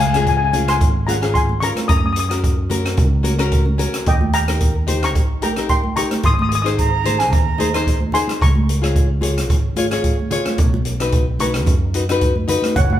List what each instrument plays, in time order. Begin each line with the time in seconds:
Already playing: fretless electric bass C#2
0.00 closed hi-hat
0.07 steel pan G#5
0.14 nylon-string guitar C#4 F4 G#4, steel pan G#5, cross-stick, closed hi-hat
0.20 steel pan G#5
0.27 steel pan G#5, kick, closed hi-hat
0.37 steel pan G#5
0.45 steel pan G#5
0.51 nylon-string guitar C#4 F4 G#4, steel pan G#5, closed hi-hat, high conga, low conga
0.68 steel pan G#5 C6, cross-stick, closed hi-hat
0.81 fretless electric bass G#1, kick, closed hi-hat, low conga
1.07 nylon-string guitar C#4 F4 G#4, steel pan F#5 A#5, closed hi-hat, high conga
1.21 nylon-string guitar C#4 F4 G#4, cross-stick, closed hi-hat
1.34 steel pan G#5 C6, kick, closed hi-hat
1.49 high conga
1.60 nylon-string guitar C#4 F4 A#4, steel pan A#5 C#6, closed hi-hat, low conga
1.75 cross-stick, closed hi-hat, high conga
1.88 fretless electric bass F#2, steel pan A#5 D#6, kick, closed hi-hat
1.97 steel pan D#6
2.03 steel pan D#6, high conga
2.13 steel pan D#6, closed hi-hat
2.19 steel pan D#6
2.29 nylon-string guitar C#4 F#4 A#4, steel pan D#6, cross-stick, closed hi-hat
2.44 kick, closed hi-hat
2.70 nylon-string guitar C#4 F#4 A#4, closed hi-hat, high conga, low conga
2.86 cross-stick, closed hi-hat
2.97 fretless electric bass C#2, kick, closed hi-hat, low conga
3.23 nylon-string guitar C#4 F#4 A#4, closed hi-hat, high conga
3.39 nylon-string guitar C#4 F#4 A#4, cross-stick, closed hi-hat
3.52 kick, closed hi-hat
3.66 high conga
3.78 nylon-string guitar C#4 F#4 A#4, closed hi-hat, low conga
3.94 cross-stick, closed hi-hat
4.06 fretless electric bass D#2, steel pan D#5 G5, kick, closed hi-hat
4.21 high conga
4.33 steel pan G5 A#5, closed hi-hat
4.48 nylon-string guitar D#4 G4 A#4, cross-stick, closed hi-hat
4.61 kick, closed hi-hat
4.87 nylon-string guitar D#4 G4 C5, closed hi-hat, high conga, low conga
5.03 steel pan A#5 C#6, cross-stick, closed hi-hat
5.15 fretless electric bass A#1, kick, closed hi-hat, low conga
5.42 nylon-string guitar D#4 G4 A#4, steel pan G5 A#5, closed hi-hat, high conga
5.56 nylon-string guitar D#4 G4 A#4, cross-stick, closed hi-hat
5.69 steel pan G5 C6, kick, closed hi-hat
5.84 high conga
5.96 nylon-string guitar D#4 G4 A#4, steel pan A#5 C#6, closed hi-hat, low conga
6.11 cross-stick, closed hi-hat, high conga
6.23 fretless electric bass G#1, steel pan C6 D#6, kick, closed hi-hat, low conga
6.34 steel pan D#6
6.39 steel pan D#6, high conga
6.49 steel pan D#6, closed hi-hat
6.55 steel pan D#6
6.62 nylon-string guitar D#4 G#4, steel pan D#6, cross-stick, closed hi-hat
6.66 nylon-string guitar C5
6.78 flute A#5, kick, closed hi-hat
7.04 nylon-string guitar D#4 G#4 C5, closed hi-hat, high conga, low conga
7.19 flute G#5, cross-stick, closed hi-hat
7.31 fretless electric bass D#2, flute A#5, kick, closed hi-hat, low conga
7.58 nylon-string guitar D#4 G#4 C5, closed hi-hat, high conga
7.74 nylon-string guitar D#4 G#4 C5, cross-stick, closed hi-hat
7.87 kick, closed hi-hat
8.00 high conga
8.12 nylon-string guitar D#4 G#4 C5, steel pan G#5 C6, closed hi-hat, low conga
8.28 cross-stick, closed hi-hat, high conga
8.41 fretless electric bass C#2, steel pan A#5 C#6, kick, closed hi-hat
8.55 high conga
8.69 closed hi-hat
8.82 nylon-string guitar F4 G#4 C#5, cross-stick, closed hi-hat
8.96 kick, closed hi-hat
9.21 nylon-string guitar F4 G#4 C#5, closed hi-hat, high conga, low conga
9.38 cross-stick, closed hi-hat
9.50 fretless electric bass G#1, kick, closed hi-hat, low conga
9.76 nylon-string guitar F4 G#4 C#5, closed hi-hat, high conga
9.91 nylon-string guitar F4 G#4 C#5, cross-stick, closed hi-hat
10.04 kick, closed hi-hat
10.19 high conga
10.31 nylon-string guitar F4 G#4 C#5, closed hi-hat, low conga
10.45 cross-stick, closed hi-hat, high conga
10.58 fretless electric bass B1, kick, closed hi-hat
10.74 high conga
10.85 closed hi-hat
11.00 nylon-string guitar D#4 F#4 B4, cross-stick, closed hi-hat
11.12 kick, closed hi-hat
11.39 nylon-string guitar D#4 F#4 B4, steel pan A#5 C#6, closed hi-hat, high conga, low conga
11.54 cross-stick, closed hi-hat
11.66 fretless electric bass F#2, kick, closed hi-hat, low conga
11.94 nylon-string guitar D#4 F#4 B4, closed hi-hat
12.09 nylon-string guitar D#4 F#4 B4, cross-stick, closed hi-hat
12.21 kick, closed hi-hat
12.36 high conga
12.48 nylon-string guitar D#4 F#4 B4, closed hi-hat, low conga
12.62 cross-stick, closed hi-hat, high conga
12.76 fretless electric bass F#1, steel pan C#5 F#5, kick, closed hi-hat
12.85 steel pan F#5
12.90 steel pan F#5, high conga